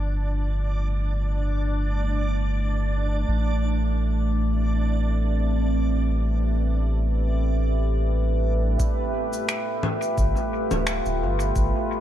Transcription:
Already playing: G1 A3 D4 F4 G4 B4 D5 E5
3.28 A1
3.64 C4
8.80 kick, shaker
9.00 F4
9.33 shaker
9.49 finger snap, shaker
9.83 low conga
10.02 shaker
10.18 G1, kick, shaker
10.36 shaker
10.71 D1, low conga, shaker
10.87 finger snap, shaker
11.05 D1, shaker
11.21 G1
11.40 shaker
11.56 G1, kick, shaker

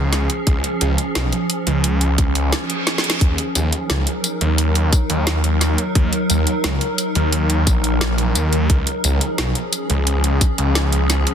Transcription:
Already playing: C#2 F3 C#4 G#4
0.13 snare, closed hi-hat
0.30 closed hi-hat
0.47 C#2, kick, closed hi-hat
0.64 closed hi-hat
0.81 C#2, closed hi-hat
0.98 closed hi-hat
1.15 B1, snare, closed hi-hat
1.32 closed hi-hat
1.50 closed hi-hat
1.67 C#2, closed hi-hat
1.84 closed hi-hat
2.01 closed hi-hat
2.18 C#2, kick, closed hi-hat
2.35 closed hi-hat
2.52 snare, closed hi-hat, reverse cymbal
2.70 closed hi-hat
2.87 snare, closed hi-hat
2.98 snare
3.04 closed hi-hat
3.10 snare
3.21 D#2 F#3 D#4 A#4, kick, closed hi-hat
3.38 closed hi-hat
3.55 D#2, closed hi-hat, tambourine
3.73 closed hi-hat
3.90 C#2, snare, closed hi-hat
4.07 closed hi-hat
4.24 closed hi-hat, tambourine
4.41 D#2, closed hi-hat
4.58 closed hi-hat
4.75 closed hi-hat
4.93 kick, closed hi-hat, tambourine
5.10 D#2, closed hi-hat
5.27 snare, closed hi-hat
5.44 D#2, closed hi-hat
5.61 snare, closed hi-hat, tambourine
5.78 closed hi-hat
5.95 D#2, kick, closed hi-hat
6.13 closed hi-hat
6.30 D#2, closed hi-hat, tambourine
6.47 closed hi-hat
6.64 C#2, snare, closed hi-hat
6.81 closed hi-hat
6.98 closed hi-hat, tambourine
7.15 D#2, closed hi-hat
7.33 closed hi-hat
7.50 closed hi-hat
7.67 A#1, kick, closed hi-hat, tambourine
7.84 closed hi-hat
8.01 A#1, snare, closed hi-hat
8.18 closed hi-hat
8.35 D#2, closed hi-hat, tambourine
8.53 closed hi-hat
8.70 C#2 F3 C#4 G#4, kick, closed hi-hat
8.87 closed hi-hat
9.04 C#2, closed hi-hat, tambourine
9.21 closed hi-hat
9.38 B1, snare, closed hi-hat
9.55 closed hi-hat
9.73 closed hi-hat, tambourine
9.90 C#2, closed hi-hat
10.07 closed hi-hat
10.24 closed hi-hat
10.41 kick, closed hi-hat, tambourine
10.58 C#2, closed hi-hat
10.75 snare, closed hi-hat
10.92 C#2, closed hi-hat
11.10 snare, closed hi-hat, tambourine
11.27 closed hi-hat

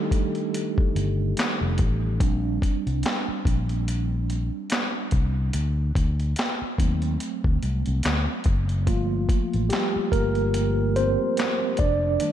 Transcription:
Already playing: D#3 G3 A3 D4 D#4 G4 A4
0.11 kick, closed hi-hat
0.35 closed hi-hat
0.54 closed hi-hat
0.78 kick
0.95 G1, closed hi-hat
1.37 snare, clap, closed hi-hat
1.61 F1
1.78 A1, kick, closed hi-hat
2.20 A#1 G3 C4 D4, kick, closed hi-hat
2.62 kick, closed hi-hat
2.87 C2, closed hi-hat
3.03 snare, clap, closed hi-hat
3.28 muted fretless electric bass stroke
3.45 A#1, kick, closed hi-hat
3.69 closed hi-hat
3.88 closed hi-hat
4.30 closed hi-hat
4.70 snare, clap, closed hi-hat
5.11 C2, kick, closed hi-hat
5.53 D2, closed hi-hat
5.95 D2, kick, closed hi-hat
6.20 closed hi-hat
6.36 snare, clap, closed hi-hat
6.62 muted fretless electric bass stroke
6.78 D#2 F#3 A3 C4, kick, closed hi-hat
7.02 closed hi-hat
7.20 closed hi-hat
7.44 D2, kick
7.63 C2, closed hi-hat
7.86 C2, closed hi-hat
8.03 D2, snare, clap, closed hi-hat
8.44 F#1, kick, closed hi-hat
8.69 closed hi-hat
8.86 G1 F3 A3 A#3 F4, kick, closed hi-hat
9.29 kick, closed hi-hat
9.54 A1, closed hi-hat
9.69 G3 G4, snare, clap, closed hi-hat
9.96 muted fretless electric bass stroke
10.12 G1 A#3 A#4, kick, closed hi-hat
10.35 closed hi-hat
10.54 closed hi-hat
10.96 C4 C5, closed hi-hat
11.37 snare, clap, closed hi-hat
11.77 F1 D4 D5, kick, closed hi-hat
12.20 D#3 G3 A3 D4, closed hi-hat

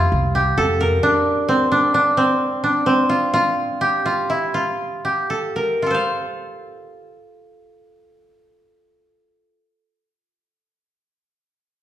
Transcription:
Already playing: C4 D4 F4 G4
0.12 C2
0.35 G4
0.58 F2 A4
0.81 A#4
1.03 D4
1.49 C4
1.72 D4
1.94 D4
2.17 C4
2.64 D4
2.86 C4
3.09 F4
3.34 F4
3.81 G4
4.06 F4
4.30 E4
4.54 F4
5.05 G4
5.30 A4
5.56 A#4
5.82 F4
5.86 A4
5.90 C5 F5

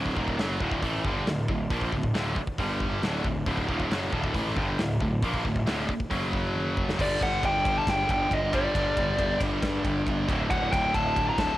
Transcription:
Already playing: D1 D2 A2 D3
0.06 kick
0.16 D#1 D#2 A#2 D#3, kick
0.28 kick
0.39 F#1 F#2 C#3 F#3, snare, open hi-hat
0.60 D1 D2 A2 D3, kick
0.72 kick
0.82 A1 A2 E3 A3, kick, open hi-hat
1.04 G1 G2 D3 G3, kick
1.26 D1 D2 A2, snare, open hi-hat
1.48 D1 D2 A2, kick
1.70 A#1 A#2 F3 A#3, kick, open hi-hat
1.81 kick
1.92 D1 D2 A2, kick
2.03 kick
2.14 D1 D2 A2 D3, snare, open hi-hat
2.36 kick
2.47 kick
2.58 G1 G2 D3 G3, kick, open hi-hat
2.80 kick
3.02 D1 D2 A2 D3, snare, open hi-hat
3.24 D1 D2 A2, kick
3.46 D1 D2 A2 D3, kick, open hi-hat
3.58 kick
3.69 D#1 D#2 A#2 D#3, kick
3.80 kick
3.90 F#1 F#2 C#3 F#3, snare, open hi-hat
4.12 D1 D2 A2 D3, kick
4.24 kick
4.34 A1 A2 E3 A3, kick, open hi-hat
4.57 G1 G2 D3 G3, kick
4.78 D1 D2 A2, snare, open hi-hat
5.01 D1 D2 A2, kick
5.22 A#1 A#2 F3 A#3, kick, open hi-hat
5.34 kick
5.45 D1 D2 A2, kick
5.56 kick
5.66 D1 D2 A2 D3, snare, open hi-hat
5.89 kick
6.00 kick
6.11 F#1 F#2 C#3 F#3, kick, open hi-hat
6.33 kick
6.55 high tom
6.77 kick
6.89 snare
6.98 G1 G2 D3 G3 D5, kick, crash
7.21 G1 F#5, kick, ride
7.43 G1 G5, kick, ride
7.65 kick, ride
7.78 A5
7.87 G1 G5, kick, snare, ride
8.09 G1 G5, kick, ride
8.31 G1 D#5, kick, ride
8.53 G2 D3 G3 D5, kick, ride
8.74 G1 G2 D3 G3, kick, ride
8.96 G1, kick, ride
9.18 G1, kick, ride
9.40 G1, kick, ride
9.62 G2, kick, snare, ride
9.84 G1, kick, ride
10.06 G1, kick, ride
10.28 D1 D2 A2 D3, kick, ride
10.50 D1 F#5, kick, ride
10.73 D1 G5, kick, ride
10.94 D1 A5, kick, ride
11.16 kick, ride
11.29 A#5
11.38 D1 A5, kick, snare, ride

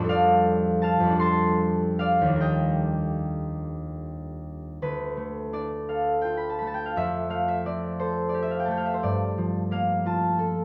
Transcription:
Already playing: F2 G3 F4 A5 B5 C#6 F6
0.00 D4 A4
0.09 D5 F5
0.82 F5 A5
1.00 F2
1.05 G3
1.10 D4
1.15 A4
1.20 A5 C6
1.99 D5 F5
2.21 D#2
2.25 G3
2.31 D4
2.36 A#4
2.40 D#5 G5
4.82 D2 B4
5.17 A3
5.53 D4 D5
5.89 A4 F5
6.22 F4 G5
6.37 B5
6.49 A5
6.59 A3 B5
6.67 A5
6.74 G5
6.86 F5
6.96 F2 E5
7.30 A3 F5
7.48 E5
7.66 C4 D5
7.99 A4 C5
8.29 D5
8.34 G4
8.42 E5
8.51 F5
8.59 G5
8.65 A3 A5
8.71 G5
8.77 F5
8.85 E5
8.94 C5
9.03 G2 D5
9.38 F3
9.71 A#3 F5
10.06 F4 A5
10.39 A4

